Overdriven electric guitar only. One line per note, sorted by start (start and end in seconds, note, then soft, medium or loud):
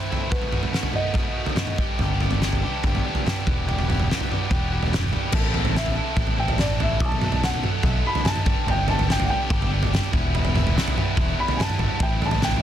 0.00 0.11 E4 loud
0.09 0.29 A2 medium
0.09 0.30 E3 medium
0.09 0.29 A3 medium
0.09 0.31 C4 medium
0.09 0.31 E4 medium
0.30 0.50 B2 medium
0.30 0.51 D#3 medium
0.30 0.51 A3 medium
0.30 0.52 B3 medium
0.30 0.53 F#4 medium
0.51 0.71 B2 medium
0.51 0.71 D#3 medium
0.51 0.72 A3 medium
0.51 0.74 B3 medium
0.51 0.74 F#4 medium
0.72 0.93 B2 medium
0.72 0.94 D#3 medium
0.72 0.94 A3 medium
0.72 0.95 B3 medium
0.72 0.95 F#4 medium
0.94 1.14 B2 medium
0.94 1.15 D#3 medium
0.94 1.15 A3 medium
0.94 1.16 B3 medium
0.94 1.17 F#4 medium
1.15 1.35 B2 medium
1.15 1.35 D#3 medium
1.15 1.36 A3 medium
1.15 1.37 B3 medium
1.15 1.37 F#4 loud
1.36 1.55 B2 medium
1.36 1.55 D#3 medium
1.36 1.56 A3 medium
1.36 1.58 B3 medium
1.36 1.57 F#4 medium
1.56 1.76 B2 medium
1.56 1.77 D#3 loud
1.56 1.77 A3 medium
1.56 1.79 B3 medium
1.56 1.78 F#4 medium
1.78 1.99 G2 medium
1.78 2.00 D3 medium
1.78 2.01 G3 medium
1.78 2.01 B3 medium
1.78 2.02 D4 medium
1.78 2.02 G4 medium
2.00 2.18 G2 medium
2.00 2.18 D3 medium
2.00 2.20 G3 medium
2.00 2.20 B3 medium
2.00 2.21 D4 medium
2.00 2.22 G4 medium
2.19 2.39 G2 medium
2.19 2.40 D3 medium
2.19 2.41 G3 medium
2.19 2.42 B3 medium
2.19 2.42 D4 medium
2.19 2.43 G4 medium
2.40 2.60 G2 medium
2.40 2.61 D3 medium
2.40 2.63 G3 medium
2.40 2.63 B3 medium
2.40 2.63 D4 medium
2.40 2.64 G4 medium
2.62 2.82 G2 medium
2.62 2.83 D3 medium
2.62 2.84 G3 medium
2.62 2.84 B3 medium
2.62 2.84 D4 medium
2.62 2.86 G4 medium
2.84 3.02 G2 medium
2.84 3.03 D3 medium
2.84 3.04 G3 medium
2.84 3.04 B3 medium
2.84 3.04 D4 medium
2.84 3.05 G4 medium
3.04 3.23 G2 medium
3.04 3.24 D3 medium
3.04 3.26 G3 medium
3.04 3.25 B3 medium
3.04 3.26 D4 medium
3.04 3.27 G4 medium
3.24 3.44 G2 medium
3.24 3.44 D3 medium
3.24 3.45 G3 medium
3.24 3.45 B3 medium
3.24 3.46 D4 loud
3.24 3.46 G4 loud
3.44 3.64 E2 medium
3.44 3.65 B2 medium
3.44 3.65 E3 medium
3.44 3.66 G3 loud
3.44 3.67 B3 medium
3.44 3.67 G4 medium
3.65 3.85 E2 medium
3.65 3.86 B2 medium
3.65 3.87 E3 medium
3.65 3.88 G3 medium
3.65 3.88 B3 medium
3.65 3.88 G4 medium
3.86 4.07 E2 medium
3.86 4.07 B2 medium
3.86 4.08 E3 medium
3.86 4.08 G3 medium
3.86 4.08 B3 medium
3.86 4.09 G4 medium
4.08 4.28 E2 medium
4.08 4.28 B2 medium
4.08 4.29 E3 medium
4.08 4.29 G3 medium
4.08 4.30 B3 medium
4.08 4.30 G4 medium
4.29 4.49 E2 medium
4.29 4.48 B2 medium
4.29 4.49 E3 medium
4.29 4.50 G3 medium
4.29 4.50 B3 medium
4.29 4.51 G4 medium
4.49 4.69 E2 medium
4.49 4.70 B2 medium
4.49 4.70 E3 medium
4.49 4.71 G3 medium
4.49 4.72 B3 medium
4.49 4.72 G4 medium
4.71 4.91 E2 medium
4.71 4.91 B2 medium
4.71 4.92 E3 medium
4.71 4.92 G3 medium
4.71 4.93 B3 medium
4.71 4.93 G4 medium
4.92 5.10 E2 medium
4.92 5.10 B2 medium
4.92 5.11 E3 medium
4.92 5.11 G3 medium
4.92 5.11 B3 medium
4.92 5.12 G4 medium
5.11 5.32 E2 medium
5.11 5.32 B2 medium
5.11 5.31 E3 medium
5.11 5.33 G3 medium
5.11 5.33 B3 medium
5.11 5.33 G4 medium
5.33 5.51 A2 medium
5.33 5.52 E3 medium
5.33 5.53 C4 medium
5.33 5.53 E4 medium
5.33 5.54 A4 medium
5.53 5.73 A2 medium
5.53 5.74 E3 medium
5.53 5.75 C4 medium
5.53 5.75 E4 medium
5.53 5.77 A4 medium
5.74 5.93 A2 medium
5.74 5.94 E3 medium
5.74 5.95 C4 medium
5.74 5.95 E4 medium
5.74 5.96 A4 medium
5.95 6.15 A2 medium
5.95 6.15 E3 medium
5.95 6.16 C4 medium
5.95 6.16 E4 medium
5.95 6.17 A4 medium
6.16 6.36 A2 medium
6.16 6.37 E3 loud
6.16 6.37 C4 loud
6.16 6.37 E4 medium
6.16 6.38 A4 medium
6.37 6.57 A2 medium
6.37 6.58 E3 medium
6.37 6.59 C4 medium
6.37 6.60 E4 medium
6.37 6.60 A4 medium
6.59 6.79 A2 medium
6.59 6.80 E3 medium
6.59 6.81 C4 medium
6.59 6.81 E4 medium
6.59 6.81 A4 medium
6.80 7.00 A2 medium
6.80 7.00 E3 medium
6.80 7.01 C4 medium
6.80 7.01 E4 medium
6.80 7.01 A4 medium
7.00 7.22 B2 medium
7.00 7.23 F#3 medium
7.00 7.22 A3 medium
7.00 7.24 D#4 medium
7.00 7.24 A4 medium
7.23 7.41 B2 medium
7.23 7.43 F#3 medium
7.23 7.43 A3 medium
7.23 7.43 D#4 medium
7.23 7.43 A4 medium
7.42 7.63 B2 medium
7.42 7.64 F#3 medium
7.42 7.63 A3 medium
7.42 7.65 D#4 medium
7.42 7.65 A4 medium
7.64 7.83 B2 medium
7.64 7.84 F#3 medium
7.64 7.85 A3 medium
7.64 7.84 D#4 loud
7.64 7.85 A4 medium
7.85 8.04 B2 medium
7.85 8.05 F#3 loud
7.85 8.05 A3 loud
7.85 8.05 D#4 medium
7.85 8.06 A4 loud
8.05 8.24 B2 medium
8.05 8.25 F#3 medium
8.05 8.25 A3 medium
8.05 8.26 D#4 medium
8.05 8.26 A4 medium
8.25 8.45 B2 medium
8.25 8.45 F#3 medium
8.25 8.46 A3 medium
8.25 8.46 D#4 medium
8.25 8.46 A4 medium
8.45 8.65 G2 medium
8.45 8.66 D3 medium
8.45 8.67 G3 medium
8.45 8.68 B3 medium
8.45 8.68 D4 loud
8.45 8.69 G4 loud
8.66 8.86 G2 medium
8.66 8.86 D3 medium
8.66 8.88 G3 medium
8.66 8.88 B3 medium
8.66 8.89 D4 medium
8.66 8.89 G4 medium
8.87 9.05 G2 medium
8.87 9.06 D3 medium
8.87 9.08 G3 medium
8.87 9.08 B3 medium
8.87 9.08 D4 medium
8.87 9.09 G4 medium
9.06 9.27 G2 medium
9.06 9.28 D3 medium
9.06 9.29 G3 medium
9.06 9.30 B3 medium
9.06 9.30 D4 medium
9.06 9.31 G4 loud
9.28 9.48 G2 medium
9.28 9.48 D3 medium
9.28 9.49 G3 medium
9.28 9.49 B3 medium
9.28 9.50 D4 medium
9.28 9.51 G4 loud
9.49 9.68 G2 loud
9.49 9.69 D3 loud
9.49 9.70 G3 loud
9.49 9.70 B3 loud
9.49 9.69 D4 loud
9.49 9.71 G4 loud
9.69 9.88 G2 medium
9.69 9.89 D3 medium
9.69 9.90 G3 medium
9.69 9.91 B3 medium
9.69 9.91 D4 medium
9.69 9.92 G4 medium
9.89 10.10 G2 medium
9.89 10.11 D3 medium
9.89 10.11 G3 medium
9.89 10.12 B3 medium
9.89 10.12 D4 medium
9.89 10.13 G4 medium
10.11 10.31 E2 medium
10.11 10.32 B2 loud
10.11 10.33 E3 loud
10.11 10.33 G3 medium
10.11 10.33 B3 loud
10.11 10.34 E4 loud
10.32 10.51 E2 medium
10.32 10.52 B2 medium
10.32 10.53 E3 medium
10.32 10.54 G3 medium
10.32 10.54 B3 loud
10.32 10.55 E4 loud
10.52 10.72 E2 medium
10.52 10.73 B2 medium
10.52 10.75 E3 medium
10.52 10.76 G3 medium
10.52 10.75 B3 medium
10.52 10.76 E4 medium
10.74 10.93 E2 medium
10.74 10.94 B2 medium
10.74 10.95 E3 medium
10.74 10.96 G3 medium
10.74 10.95 B3 medium
10.74 10.96 E4 medium
10.94 11.13 E2 medium
10.94 11.14 B2 medium
10.94 11.15 E3 medium
10.94 11.15 G3 medium
10.94 11.17 B3 medium
10.94 11.16 E4 medium
11.15 11.36 E2 medium
11.15 11.36 B2 loud
11.15 11.37 E3 loud
11.15 11.38 G3 medium
11.15 11.38 B3 loud
11.15 11.39 E4 loud
11.37 11.57 E2 medium
11.37 11.59 B2 medium
11.37 11.59 E3 medium
11.37 11.59 G3 medium
11.37 11.60 B3 medium
11.37 11.60 E4 medium
11.59 11.78 E2 medium
11.59 11.79 B2 medium
11.59 11.80 E3 medium
11.59 11.79 G3 medium
11.59 11.81 B3 medium
11.59 11.81 E4 medium
11.79 11.99 E2 medium
11.79 11.99 B2 medium
11.79 11.99 E3 medium
11.79 12.00 G3 medium
11.79 12.00 B3 medium
11.79 12.00 E4 medium
12.00 12.19 A2 medium
12.00 12.20 E3 medium
12.00 12.21 A3 medium
12.00 12.21 C4 medium
12.00 12.21 E4 medium
12.20 12.40 A2 medium
12.20 12.41 E3 medium
12.20 12.42 A3 medium
12.20 12.42 C4 medium
12.20 12.43 E4 medium
12.42 12.61 A2 medium
12.42 12.61 E3 medium
12.42 12.62 A3 medium
12.42 12.62 C4 loud
12.42 12.62 E4 medium